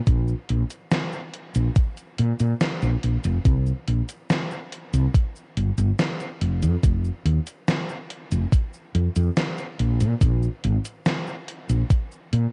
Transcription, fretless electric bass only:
0.07 0.33 A#1 loud
0.50 0.63 A#1 medium
1.56 1.68 A#1 medium
2.19 2.32 A#2 medium
2.40 2.53 A#2 medium
2.83 2.95 A#1 medium
3.04 3.16 A#1 medium
3.25 3.37 F1 loud
3.45 3.71 C2 loud
3.88 4.01 A#1 medium
4.94 5.06 C2 medium
5.57 5.70 G1 medium
5.78 5.91 G1 loud
6.41 6.64 F1 medium
6.62 6.75 F2 medium
6.83 7.09 F1 loud
7.25 7.38 D#2 medium
8.32 8.44 F1 medium
8.95 9.08 F2 medium
9.16 9.29 F2 medium
9.80 10.03 A#1 medium
10.01 10.14 A#2 medium
10.21 10.47 A#1 loud
10.65 10.77 G#1 medium
11.70 11.82 A#1 medium
12.33 12.46 A#2 medium

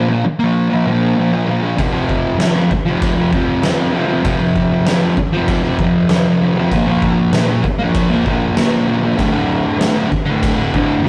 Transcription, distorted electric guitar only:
0.00 0.24 A#2 medium
0.00 0.13 F3 loud
0.09 0.24 A#3 medium
0.13 0.25 F3 medium
0.25 muted distorted electric guitar stroke soft
0.39 0.68 A#3 medium
0.44 0.74 F3 medium
0.69 0.89 A#3 medium
0.74 0.88 F3 medium
0.86 1.15 A#2 medium
0.86 1.18 F3 medium
0.91 1.19 A#3 medium
1.16 1.45 A#2 loud
1.16 1.35 F3 medium
1.20 1.31 A#3 loud
1.32 1.49 F3 medium
1.32 1.50 A#3 medium
1.46 1.76 A#2 medium
1.46 1.66 F3 medium
1.51 1.60 A#3 medium
1.62 1.76 A#3 medium
1.66 1.78 F3 medium
1.76 2.38 F2 medium
1.76 1.95 C3 medium
1.81 1.92 F3 loud
1.92 2.43 F3 medium
1.96 2.40 C3 medium
2.39 2.71 F2 loud
2.39 2.58 C3 loud
2.43 2.54 F3 loud
2.54 2.72 F3 medium
2.59 2.71 C3 medium
2.71 muted distorted electric guitar stroke soft
2.86 3.20 C3 medium
2.86 3.16 F3 medium
3.16 3.35 F3 medium
3.21 3.33 C3 soft
3.31 3.60 F2 medium
3.31 3.63 C3 medium
3.36 3.65 F3 medium
3.62 3.91 F2 loud
3.62 3.80 C3 loud
3.66 3.77 F3 loud
3.77 3.94 C3 medium
3.77 3.97 F3 medium
3.92 4.22 F2 medium
3.92 4.11 C3 medium
3.97 4.07 F3 medium
4.07 4.27 F3 medium
4.12 4.25 C3 medium
4.23 4.71 F2 medium
4.23 4.42 C3 loud
4.28 4.38 F3 loud
4.39 4.89 F3 medium
4.43 4.86 C3 medium
4.85 5.16 F2 loud
4.85 5.04 C3 loud
4.89 5.01 F3 loud
5.01 5.17 F3 medium
5.05 5.17 C3 medium
5.17 muted distorted electric guitar stroke soft
5.32 5.63 F3 medium
5.37 5.67 C3 medium
5.63 5.83 F3 medium
5.68 5.80 C3 medium
5.79 6.09 F2 medium
5.79 6.11 C3 medium
5.83 6.14 F3 medium
6.10 6.40 F2 loud
6.10 6.29 C3 loud
6.14 6.25 F3 loud
6.26 6.46 F3 medium
6.30 6.43 C3 medium
6.41 6.70 F2 medium
6.41 6.59 C3 medium
6.46 6.56 F3 medium
6.56 6.73 F3 medium
6.60 6.72 C3 medium
6.71 7.18 A#2 loud
6.71 6.91 F3 loud
6.76 6.86 A#3 loud
6.87 7.35 A#3 medium
6.91 7.34 F3 medium
7.32 7.63 A#2 loud
7.32 7.52 F3 loud
7.37 7.47 A#3 loud
7.48 7.64 A#3 medium
7.52 7.65 F3 medium
7.64 muted distorted electric guitar stroke medium
7.79 8.09 A#3 medium
7.83 8.14 F3 medium
8.10 8.29 A#3 medium
8.15 8.28 F3 medium
8.26 8.55 A#2 medium
8.26 8.58 F3 loud
8.30 8.59 A#3 medium
8.56 8.86 A#2 loud
8.56 8.75 F3 medium
8.60 8.70 A#3 loud
8.71 8.90 A#3 medium
8.76 8.89 F3 medium
8.87 9.16 A#2 medium
8.87 9.06 F3 medium
8.91 9.01 A#3 medium
9.02 9.16 A#3 medium
9.06 9.18 F3 medium
9.16 9.64 D2 medium
9.16 9.35 A2 loud
9.16 9.30 D3 loud
9.31 9.81 D3 medium
9.36 9.79 A2 medium
9.78 10.08 D2 loud
9.78 9.97 A2 loud
9.82 9.93 D3 loud
9.94 10.10 D3 medium
9.99 10.09 A2 medium
10.10 muted distorted electric guitar stroke medium
10.25 10.55 D3 medium
10.29 10.60 A2 medium
10.56 10.75 D3 medium
10.61 10.73 A2 medium
10.72 11.01 D2 medium
10.72 11.03 A2 medium
10.76 11.05 D3 loud
11.02 11.09 D2 loud
11.02 11.09 A2 loud

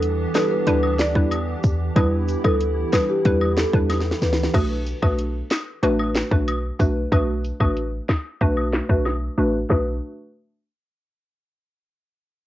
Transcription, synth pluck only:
0.35 0.56 G3 medium
0.35 0.56 D4 medium
0.35 0.56 E4 medium
0.35 0.56 B4 medium
0.67 0.88 G3 medium
0.67 0.88 D4 medium
0.67 0.88 E4 medium
0.67 0.89 B4 loud
1.15 1.37 G3 medium
1.15 1.37 D4 medium
1.15 1.37 E4 medium
1.15 1.37 B4 medium
1.96 2.40 G3 loud
1.96 2.41 D4 medium
1.96 2.41 E4 medium
1.96 2.41 B4 loud
2.44 2.66 G3 medium
2.44 2.66 D4 medium
2.44 2.66 E4 medium
2.44 2.66 B4 medium
2.93 3.14 G3 medium
2.93 3.14 D4 medium
2.93 3.14 E4 medium
2.93 3.14 B4 medium
3.25 3.46 G3 loud
3.25 3.46 D4 medium
3.25 3.47 E4 medium
3.25 3.47 B4 loud
3.74 3.95 G3 medium
3.74 3.95 D4 medium
3.74 3.95 E4 medium
3.74 3.95 B4 medium
4.54 4.75 A3 medium
4.54 4.75 D4 medium
4.54 4.75 F#4 medium
4.54 4.76 B4 loud
5.02 5.24 A3 medium
5.02 5.24 D4 medium
5.02 5.24 F#4 medium
5.02 5.24 B4 medium
5.83 6.27 A3 medium
5.83 6.28 D4 medium
5.83 6.28 F#4 medium
5.83 6.28 B4 loud
6.31 6.53 A3 medium
6.31 6.53 D4 medium
6.31 6.53 F#4 medium
6.31 6.53 B4 medium
6.79 7.01 A3 medium
6.79 7.01 D4 medium
6.79 7.01 F#4 medium
6.79 7.01 B4 medium
7.12 7.33 A3 loud
7.12 7.33 D4 medium
7.12 7.34 F#4 medium
7.12 7.34 B4 loud
7.60 7.82 A3 medium
7.60 7.82 D4 medium
7.60 7.82 F#4 medium
7.60 7.82 B4 medium
8.41 8.86 A3 loud
8.41 8.86 D4 medium
8.41 8.86 F#4 medium
8.41 8.86 B4 loud
8.89 9.11 A3 medium
8.89 9.11 D4 medium
8.89 9.11 F#4 medium
8.89 9.11 B4 medium
9.38 9.59 A3 medium
9.38 9.59 D4 medium
9.38 9.59 F#4 medium
9.38 9.59 B4 medium
9.69 9.94 A3 medium
9.69 9.94 D4 medium
9.69 9.94 F#4 medium
9.69 9.94 B4 loud

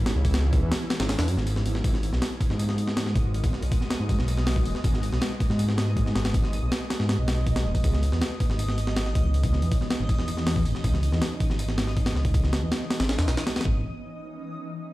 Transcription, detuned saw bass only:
0.00 0.14 G#1 medium
0.16 0.61 C#2 loud
0.63 0.71 E2 medium
1.00 1.17 G#1 medium
1.19 1.30 E2 loud
1.28 1.37 F#2 loud
1.38 1.64 G#1 medium
1.66 1.82 G#1 loud
1.84 2.11 G#1 loud
2.13 2.21 B1 medium
2.50 3.14 G#2 medium
3.16 3.61 G#1 loud
3.63 3.71 B1 medium
4.00 4.17 G#2 medium
4.19 4.67 B1 loud
4.65 4.74 D#1 medium
4.84 5.11 G#1 loud
5.12 5.21 B1 medium
5.50 6.14 G#2 medium
6.15 6.61 G#1 loud
6.62 6.71 B1 medium
7.00 7.17 G#2 medium
7.19 7.67 B1 loud
7.66 7.74 D#1 medium
7.84 8.11 C#2 loud
8.12 8.21 E2 medium
8.50 9.14 G#1 medium
9.15 9.61 C#2 loud
9.62 9.71 E2 medium
10.00 10.17 G#1 medium
10.19 10.67 E2 loud
10.66 10.74 G#1 medium
10.84 11.11 C#2 loud
11.12 11.21 E2 medium
11.50 12.14 G#1 medium
12.16 12.61 C#2 loud
12.62 12.71 E2 medium
13.00 13.17 G#1 medium
13.19 13.27 E2 loud
13.28 13.37 B1 medium
13.65 13.83 G#1 loud

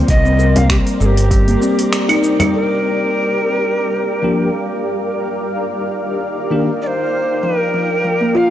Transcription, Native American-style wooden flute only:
0.10 0.58 D#5 medium
0.57 0.69 F5 medium
0.70 0.77 G4 loud
1.01 1.07 A4 medium
1.06 2.19 G4 medium
2.54 4.64 A#4 loud
6.82 6.88 D5 medium
6.87 7.45 C5 loud
7.44 8.38 A#4 medium
8.37 8.50 F5 medium

